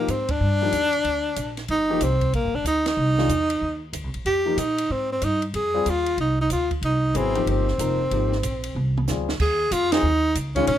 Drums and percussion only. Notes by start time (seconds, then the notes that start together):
0.08 hi-hat pedal, ride
0.28 kick, ride
0.72 hi-hat pedal, ride
0.93 ride
1.05 ride
1.36 hi-hat pedal, ride
1.57 snare, ride
1.68 ride
2.01 hi-hat pedal, ride
2.21 kick, ride
2.33 ride
2.65 hi-hat pedal, ride
2.86 snare, ride
3.18 snare
3.29 hi-hat pedal, ride
3.50 ride
3.93 hi-hat pedal, ride
4.14 ride
4.26 ride
4.58 hi-hat pedal, ride
4.78 ride
5.22 hi-hat pedal, ride
5.42 ride
5.54 ride
5.86 hi-hat pedal, ride
6.06 ride
6.18 ride
6.50 hi-hat pedal, ride
6.71 kick, ride
6.83 ride
7.15 hi-hat pedal, ride
7.35 ride
7.47 ride
7.68 snare
7.79 hi-hat pedal, ride
8.11 ride
8.32 snare
8.43 hi-hat pedal, ride
8.64 ride
8.76 mid tom
8.97 mid tom
9.08 snare, hi-hat pedal
9.29 snare
9.40 kick, crash
9.72 hi-hat pedal, ride
9.92 snare, ride
10.35 hi-hat pedal, ride
10.56 kick, ride
10.67 ride